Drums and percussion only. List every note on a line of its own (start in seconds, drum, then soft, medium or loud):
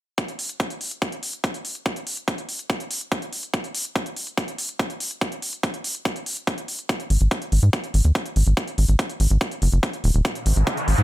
0.18 kick loud
0.18 closed hi-hat medium
0.28 closed hi-hat soft
0.39 open hi-hat loud
0.49 closed hi-hat soft
0.60 kick loud
0.60 closed hi-hat medium
0.70 closed hi-hat soft
0.81 open hi-hat medium
0.91 closed hi-hat soft
1.02 kick loud
1.02 closed hi-hat medium
1.12 closed hi-hat soft
1.23 open hi-hat loud
1.33 closed hi-hat soft
1.44 kick loud
1.44 closed hi-hat medium
1.54 closed hi-hat soft
1.65 open hi-hat medium
1.75 closed hi-hat soft
1.86 kick loud
1.86 closed hi-hat medium
1.96 closed hi-hat soft
2.07 open hi-hat loud
2.17 closed hi-hat soft
2.28 kick loud
2.28 closed hi-hat medium
2.38 closed hi-hat soft
2.49 open hi-hat medium
2.59 closed hi-hat soft
2.70 kick loud
2.70 closed hi-hat medium
2.80 closed hi-hat soft
2.91 open hi-hat loud
3.01 closed hi-hat soft
3.12 kick loud
3.12 closed hi-hat medium
3.22 closed hi-hat soft
3.33 open hi-hat medium
3.43 closed hi-hat soft
3.54 kick loud
3.54 closed hi-hat medium
3.64 closed hi-hat soft
3.75 open hi-hat loud
3.85 closed hi-hat soft
3.96 kick loud
3.96 closed hi-hat medium
4.06 closed hi-hat soft
4.17 open hi-hat loud
4.27 closed hi-hat soft
4.37 kick loud
4.37 closed hi-hat medium
4.48 closed hi-hat soft
4.58 open hi-hat loud
4.69 closed hi-hat soft
4.79 kick loud
4.79 closed hi-hat medium
4.90 closed hi-hat soft
5.00 open hi-hat loud
5.11 closed hi-hat soft
5.21 kick loud
5.21 closed hi-hat medium
5.32 closed hi-hat soft
5.42 open hi-hat loud
5.53 closed hi-hat soft
5.63 kick loud
5.63 closed hi-hat medium
5.74 closed hi-hat soft
5.84 open hi-hat loud
5.95 closed hi-hat soft
6.05 kick loud
6.05 closed hi-hat medium
6.16 closed hi-hat soft
6.26 open hi-hat loud
6.37 closed hi-hat soft
6.47 kick loud
6.47 closed hi-hat medium
6.58 closed hi-hat soft
6.68 open hi-hat medium
6.79 closed hi-hat soft
6.89 kick loud
6.89 closed hi-hat medium
7.00 closed hi-hat soft
7.10 open hi-hat loud
7.21 closed hi-hat soft
7.31 kick loud
7.31 closed hi-hat medium
7.42 closed hi-hat soft
7.52 open hi-hat medium
7.63 closed hi-hat soft
7.73 kick loud
7.73 closed hi-hat medium
7.84 closed hi-hat soft
7.94 open hi-hat loud
8.05 closed hi-hat soft
8.15 kick loud
8.15 closed hi-hat medium
8.26 closed hi-hat soft
8.36 open hi-hat medium
8.47 closed hi-hat soft
8.57 kick loud
8.57 closed hi-hat medium
8.68 closed hi-hat soft
8.78 open hi-hat loud
8.89 closed hi-hat soft
8.99 kick loud
8.99 closed hi-hat medium
9.10 closed hi-hat soft
9.20 open hi-hat medium
9.31 closed hi-hat soft
9.41 kick loud
9.41 closed hi-hat medium
9.51 closed hi-hat soft
9.62 open hi-hat loud
9.72 closed hi-hat soft
9.83 kick loud
9.83 closed hi-hat medium
9.93 closed hi-hat soft
10.04 open hi-hat medium
10.14 closed hi-hat soft
10.25 kick loud
10.25 closed hi-hat medium
10.35 closed hi-hat soft
10.46 open hi-hat loud
10.56 closed hi-hat soft
10.67 kick loud
10.67 closed hi-hat medium
10.77 closed hi-hat soft
10.88 open hi-hat medium
10.98 closed hi-hat soft